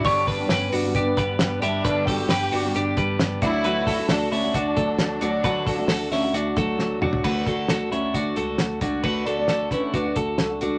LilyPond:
<<
  \new Staff \with { instrumentName = "Soft synth lead" } { \time 4/4 \key d \major \tempo 4 = 133 d''4 cis''8 b'4. b'8 d''8~ | d''8 g''2 r4 e''8~ | e''4 d''8 d''2~ d''8~ | d''2. r4 |
r1 | r8 d''16 d''8. b'8 b'8 a'8 a'8 a'8 | }
  \new Staff \with { instrumentName = "Clean electric guitar" } { \time 4/4 \key d \major <g' cis''>8 <g' b'>8 <g' b'>8 <d' fis'>8 <d' g'>8 <g' b'>4 <e' g'>8 | <g' b'>8 <fis' a'>8 <g' b'>8 <d' fis'>8 <d' g'>8 <g' b'>4 <d' fis'>8 | <fis' b'>8 <fis' a'>8 <fis' a'>8 <cis' e'>8 <d' fis'>8 <fis' a'>4 <d' fis'>8 | <fis' b'>8 <fis' a'>8 <fis' a'>8 <cis' e'>8 <d' fis'>8 <fis' a'>4 <d' fis'>8 |
<fis' b'>8 <fis' a'>8 <fis' a'>8 <cis' e'>8 <d' fis'>8 <fis' a'>4 <d' fis'>8 | <fis' b'>8 <fis' a'>8 <fis' a'>8 <cis' e'>8 <d' fis'>8 <fis' a'>4 <d' fis'>8 | }
  \new Staff \with { instrumentName = "Steel-string acoustic guitar" } { \time 4/4 \key d \major <g, d g b d' g'>8. <g b d' g'>4 <g b d' g'>8. <g b d' g'>8 <g b d' g'>8 <g b d' g'>8 | <g, d g b d' g'>8. <g b d' g'>4 <g b d' g'>8. <g b d' g'>8 <g b d' g'>8 <fis a d' fis'>8 | <d fis a d' fis'>8. <a d' fis'>4 <a d' fis'>8. <fis a d' fis'>8 <fis a d' fis'>8 <fis a d' fis'>8 | <d fis a d' fis'>8. <a d' fis'>4 <a d' fis'>8. <fis a d' fis'>8 <fis a d' fis'>8 <fis a d' fis'>8 |
<d a d' fis'>4. <d a d' fis'>4 <d a d' fis'>8 <d a d' fis'>8 <d a d' fis'>8 | <d a d' fis'>8. <a d' fis'>8. <d a d' fis'>8. <a d' fis'>4 <a d' fis'>8. | }
  \new Staff \with { instrumentName = "Violin section" } { \time 4/4 \key d \major d'4 cis'8 b4. b8 d'8~ | d'8 g'2 r4 e'8~ | e'4 d'8 d'2~ d'8~ | d'2. r4 |
r1 | r1 | }
  \new Staff \with { instrumentName = "Picked electric bass" } { \clef bass \time 4/4 \key d \major g,,4 g,,8 g,,8 g,,8 g,,8 g,,8 g,,8 | g,,4 g,,8 g,,8 g,,8 g,,8 g,,8 d,8~ | d,4 d,8 d,8 d,8 d,8 d,8 d,8 | d,4 d,8 d,8 d,8 d,8 d,8 d,8 |
d,8 d,8 d,8 d,8 d,8 cis,8 d,8 cis,8 | d,8 d,8 d,8 d8 d,8 d,8 cis,8 cis,8 | }
  \new DrumStaff \with { instrumentName = "Drums" } \drummode { \time 4/4 <hho bd>8 <hho hhp bd>8 <hho hhp sn>8 <hho hhp>8 <hho hhp bd>8 <hho hhp bd>8 <hho hhp sn>8 <hho hhp>8 | <hho hhp bd>8 <hho hhp bd>8 <hho hhp sn>8 <hho hhp>8 <hho hhp>8 <hho hhp bd>8 <hho hhp sn>8 <hho hhp bd>8 | <hho hhp>8 <hho hhp bd>8 <hho hhp sn>8 <hho hhp>8 <hho hhp bd>8 <hho hhp bd>8 <hho hhp sn>8 <hho hhp>8 | <hho hhp bd>8 <hho hhp bd>8 <hho hhp sn>8 <hho hhp sn>8 <hho hhp>8 <hho hhp bd>8 sn8 toml16 tomfh16 |
<cymc bd>8 <hh bd>8 <hh sn>8 hh8 <hh bd>8 hh8 <hh sn>8 <hh bd>8 | <cymc bd>8 hh8 <hh sn>8 <hh bd sn>8 <hh bd>8 <hh bd>8 <hh sn>8 hh8 | }
>>